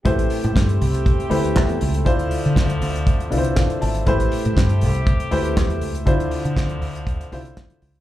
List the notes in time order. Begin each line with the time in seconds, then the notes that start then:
0.05 A1 A3 C4 E4 G4 B4 C5, kick, closed hi-hat
0.19 closed hi-hat
0.30 open hi-hat
0.44 A2, closed hi-hat
0.56 G2, kick, snare, clap
0.69 closed hi-hat
0.82 C2, open hi-hat
0.94 closed hi-hat
1.06 kick, closed hi-hat
1.20 closed hi-hat
1.30 D2 A3 E4 G4 B4 C5, open hi-hat
1.44 closed hi-hat
1.56 E2, kick, snare, clap
1.69 closed hi-hat
1.81 C#2, open hi-hat
1.94 closed hi-hat
2.05 D2 D3 F3 C4 D4 E4 F4 C5, kick, closed hi-hat
2.19 closed hi-hat
2.31 open hi-hat
2.45 D3, closed hi-hat
2.56 D2, kick, snare, clap
2.69 closed hi-hat
2.82 D2, open hi-hat
2.95 closed hi-hat
3.07 kick, closed hi-hat
3.20 closed hi-hat
3.30 C2 D3 D4 E4 F4 B4, open hi-hat
3.38 C5
3.44 closed hi-hat
3.56 C5 F5, kick, snare, clap
3.70 closed hi-hat
3.81 G#1 E5 A5, open hi-hat
3.95 closed hi-hat
4.06 A1 A3 E4 G4 B4 C5, kick, closed hi-hat
4.20 closed hi-hat
4.32 open hi-hat
4.45 A2, closed hi-hat
4.57 G2, kick, snare, clap
4.69 closed hi-hat
4.81 C2, open hi-hat
4.95 closed hi-hat
5.07 kick, closed hi-hat
5.20 closed hi-hat
5.31 D2 A3 E4 G4 B4 C5, open hi-hat
5.44 closed hi-hat
5.57 E2, kick, snare, clap
5.70 closed hi-hat
5.81 C#2, open hi-hat
5.95 closed hi-hat
6.05 D2 D3 F3 C4 D4 E4 F4 C5, kick, closed hi-hat
6.20 closed hi-hat
6.31 open hi-hat
6.45 D3, closed hi-hat
6.57 D2, kick, snare, clap
6.69 closed hi-hat
6.82 D2, open hi-hat
6.95 closed hi-hat
7.07 kick, closed hi-hat
7.21 closed hi-hat
7.32 C2 D3 D4 E4 F4 C5, open hi-hat
7.45 closed hi-hat
7.57 kick, snare, clap
7.70 closed hi-hat
7.82 C#2, open hi-hat
7.95 closed hi-hat